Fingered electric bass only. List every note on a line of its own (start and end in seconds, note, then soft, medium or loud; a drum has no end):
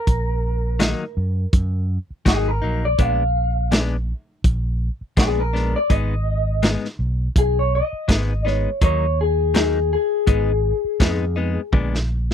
0.07 0.92 A#1 medium
1.17 1.45 F#2 medium
1.53 1.97 F#2 loud
2.10 muted fingered electric bass stroke soft
2.26 2.59 G#1 medium
2.62 2.95 A#1 medium
2.99 4.12 A#1 medium
4.44 4.88 A#1 medium
5.01 muted fingered electric bass stroke soft
5.17 5.74 A#1 medium
5.90 6.75 G#1 medium
6.99 7.27 B1 medium
7.36 7.80 B1 medium
7.93 muted fingered electric bass stroke soft
8.09 8.65 G#1 medium
8.82 9.95 D#2 medium
10.27 10.71 G#1 medium
10.84 muted fingered electric bass stroke soft
11.00 11.57 F2 medium
11.73 12.34 A#1 medium